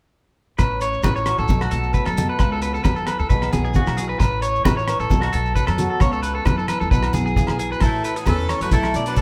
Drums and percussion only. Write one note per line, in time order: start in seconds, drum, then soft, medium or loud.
0.59 kick medium
0.59 cross-stick medium
0.59 muted conga soft
0.59 low agogo medium
0.59 shekere medium
0.81 closed hi-hat soft
0.81 shekere medium
0.93 shekere soft
1.03 kick medium
1.03 cross-stick medium
1.03 high conga medium
1.03 low agogo medium
1.03 shekere medium
1.16 shekere soft
1.26 cross-stick medium
1.26 closed hi-hat medium
1.26 low agogo medium
1.26 shekere medium
1.38 shekere soft
1.48 kick medium
1.48 muted conga soft
1.48 high conga medium
1.48 shekere medium
1.61 cross-stick medium
1.61 low agogo medium
1.71 closed hi-hat soft
1.71 muted conga soft
1.71 shekere medium
1.83 shekere soft
1.94 kick medium
1.94 shekere medium
2.06 cross-stick medium
2.06 low agogo medium
2.06 shekere soft
2.17 closed hi-hat soft
2.17 muted conga soft
2.17 high conga medium
2.17 shekere medium
2.39 kick medium
2.39 cross-stick medium
2.39 muted conga soft
2.39 low agogo medium
2.39 shekere medium
2.62 closed hi-hat soft
2.62 shekere medium
2.75 shekere soft
2.84 kick medium
2.84 cross-stick medium
2.84 high conga medium
2.84 low agogo medium
2.84 shekere medium
2.96 shekere soft
3.07 cross-stick medium
3.07 closed hi-hat soft
3.07 low agogo medium
3.07 shekere medium
3.19 shekere soft
3.30 kick medium
3.30 muted conga soft
3.30 shekere medium
3.42 cross-stick medium
3.42 low agogo medium
3.53 closed hi-hat soft
3.53 muted conga soft
3.53 high conga medium
3.53 shekere medium
3.64 shekere soft
3.74 kick medium
3.74 high conga medium
3.74 shekere medium
3.86 cross-stick medium
3.86 low agogo medium
3.86 shekere soft
3.98 closed hi-hat soft
3.98 muted conga soft
3.98 shekere medium
4.20 kick medium
4.20 cross-stick medium
4.20 muted conga soft
4.20 low agogo medium
4.20 shekere medium
4.42 closed hi-hat soft
4.42 shekere medium
4.56 shekere soft
4.65 kick medium
4.65 cross-stick medium
4.65 high conga medium
4.65 low agogo medium
4.65 shekere medium
4.79 shekere soft
4.88 cross-stick medium
4.88 closed hi-hat medium
4.88 low agogo medium
4.88 shekere medium
5.00 shekere soft
5.10 kick medium
5.10 muted conga soft
5.10 high conga medium
5.10 shekere medium
5.22 cross-stick medium
5.22 low agogo medium
5.33 closed hi-hat medium
5.33 muted conga soft
5.33 shekere medium
5.46 shekere soft
5.56 kick medium
5.56 shekere medium
5.67 cross-stick medium
5.67 low agogo medium
5.67 shekere soft
5.78 closed hi-hat soft
5.78 muted conga soft
5.78 high conga medium
5.78 shekere medium
6.00 kick medium
6.00 cross-stick medium
6.00 muted conga soft
6.00 low agogo medium
6.00 shekere medium
6.13 shekere soft
6.23 closed hi-hat soft
6.23 shekere medium
6.45 kick medium
6.45 cross-stick medium
6.45 high conga medium
6.45 low agogo medium
6.45 shekere medium
6.59 shekere soft
6.68 cross-stick medium
6.68 closed hi-hat soft
6.68 low agogo medium
6.68 shekere medium
6.81 shekere soft
6.91 kick medium
6.91 muted conga soft
6.91 shekere medium
7.03 cross-stick medium
7.03 low agogo medium
7.03 shekere soft
7.13 closed hi-hat soft
7.13 muted conga soft
7.13 high conga medium
7.13 shekere medium
7.27 shekere soft
7.36 kick medium
7.36 high conga medium
7.36 shekere medium
7.47 cross-stick medium
7.47 low agogo medium
7.47 shekere soft
7.59 closed hi-hat soft
7.59 muted conga soft
7.59 shekere medium
7.72 shekere soft
7.80 kick medium
7.80 cross-stick medium
7.80 closed hi-hat soft
7.80 muted conga soft
7.80 low agogo medium
7.80 shekere medium
8.04 closed hi-hat soft
8.04 shekere medium
8.16 closed hi-hat soft
8.16 shekere soft
8.26 kick medium
8.26 cross-stick medium
8.26 closed hi-hat soft
8.26 high conga medium
8.26 low agogo medium
8.26 shekere medium
8.39 shekere soft
8.49 cross-stick medium
8.49 closed hi-hat soft
8.49 low agogo medium
8.49 shekere medium
8.61 closed hi-hat soft
8.71 kick medium
8.71 closed hi-hat soft
8.71 muted conga soft
8.71 high conga medium
8.71 shekere medium
8.83 cross-stick medium
8.83 low agogo medium
8.83 shekere soft
8.94 closed hi-hat soft
8.94 muted conga soft
8.94 shekere medium
9.06 closed hi-hat soft
9.06 shekere soft
9.16 kick medium
9.16 closed hi-hat soft
9.16 high conga medium
9.16 shekere medium